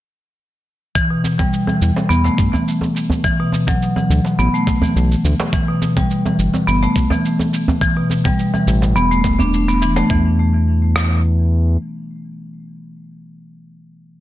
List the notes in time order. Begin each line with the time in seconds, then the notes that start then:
0.95 E3, kick, cabasa
1.10 B2
1.24 djembe tone, cabasa
1.39 G3, kick, djembe tone, cabasa
1.53 cabasa
1.67 E3, djembe tone, cabasa
1.82 E2, cabasa
1.96 djembe slap, djembe tone, cabasa
2.09 E2 B3, cabasa
2.24 A3, djembe slap, cabasa
2.38 G2, kick, cabasa
2.53 E3, djembe slap, djembe bass, cabasa
2.68 cabasa
2.81 djembe tone, cabasa
2.97 cabasa
3.10 djembe bass, cabasa
3.24 E3, kick, cabasa
3.39 B2
3.52 djembe tone, cabasa
3.67 F#3, kick, djembe tone, cabasa
3.82 cabasa
3.96 E3, djembe tone, cabasa
4.10 D2, cabasa
4.25 djembe slap, cabasa
4.39 A1 B3, cabasa
4.54 A3, cabasa
4.67 kick, djembe slap, cabasa
4.82 E3, djembe bass, cabasa
4.96 B1, cabasa
5.12 cabasa
5.24 D2, cabasa
5.40 djembe slap, cabasa
5.53 E3, kick, cabasa
5.68 B2
5.82 djembe tone, cabasa
5.97 G3, kick, djembe tone, cabasa
6.11 cabasa
6.25 E3, djembe tone, cabasa
6.39 G1, cabasa
6.54 djembe slap, djembe tone, cabasa
6.67 G1 B3, cabasa
6.82 A3, djembe slap, cabasa
6.96 B1, kick, cabasa
7.10 E3, djembe slap, djembe bass, cabasa
7.25 cabasa
7.39 djembe tone, cabasa
7.54 cabasa
7.68 djembe bass, cabasa
7.81 E3, kick, cabasa
7.97 B2
8.10 djembe tone, cabasa
8.25 G3, kick, djembe tone, cabasa
8.39 cabasa
8.54 E3, djembe tone, cabasa
8.67 A1, cabasa
8.82 djembe slap, cabasa
8.96 E1 B3, cabasa
9.11 A3, cabasa
9.24 kick, djembe slap, cabasa
9.39 D4, djembe bass, cabasa
9.54 cabasa
9.68 B3, cabasa
9.82 E3, cabasa
9.96 A3, djembe slap, cabasa
10.10 E2 E3, kick
10.96 cross-stick